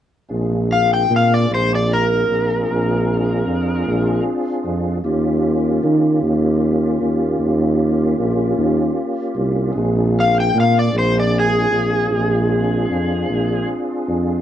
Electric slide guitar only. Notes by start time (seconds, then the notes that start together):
0.73 F5
0.94 G5
1.16 F5
1.34 D5
1.54 C5
1.75 D5
1.93 A#4
10.20 F5
10.40 G5
10.60 F5
10.79 D5
10.99 C5
11.20 D5
11.39 G#4